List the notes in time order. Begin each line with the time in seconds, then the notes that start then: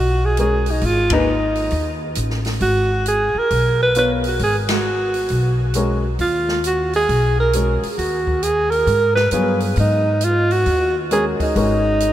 Already playing: B1 F#4
0.25 G#4
0.37 G#3 C#4 F#4 G#4 A#4, closed hi-hat
0.66 open hi-hat
0.71 D#4
0.81 G#1, open hi-hat
0.86 F4
1.10 A#3 D#4 G#4 B4, kick, ride
1.55 open hi-hat
1.71 D#2, open hi-hat
2.15 A1, closed hi-hat
2.30 snare
2.45 snare, open hi-hat
2.60 G#1 F#4, open hi-hat
3.06 G#4, closed hi-hat
3.35 A#4, muted upright bass stroke
3.50 B1, open hi-hat
3.83 B4
3.95 B3 F4 A#4 B4 C#5, closed hi-hat
4.24 F#4, open hi-hat
4.39 G#1, open hi-hat
4.44 G#4
4.69 F#4, snare, ride
5.14 open hi-hat
5.29 B1, open hi-hat
5.74 G#3 C#4 F#4 A#4, closed hi-hat
6.19 D#2 F4, open hi-hat
6.49 snare
6.64 F#4, closed hi-hat
6.93 G#4, open hi-hat
7.09 B1, open hi-hat
7.40 A#4
7.53 G#3 C#4 F#4 A#4, closed hi-hat
7.83 open hi-hat
7.98 D#2 F#4, open hi-hat
8.27 kick
8.43 G#4, closed hi-hat
8.71 A#4, open hi-hat
8.87 G#2, open hi-hat
9.15 B4, snare
9.31 G2 F#3 B3 F4 G#4 B4, closed hi-hat
9.60 open hi-hat
9.76 G#2 D#4, open hi-hat
10.21 F4, closed hi-hat
10.51 F#4, open hi-hat
10.66 D#2, open hi-hat
11.11 G#3 C#4 F#4 G#4 A#4, closed hi-hat
11.40 D#4, muted upright bass stroke, kick, open hi-hat
11.56 G#1 G#3 C#4 F#4 A#4, open hi-hat
12.00 closed hi-hat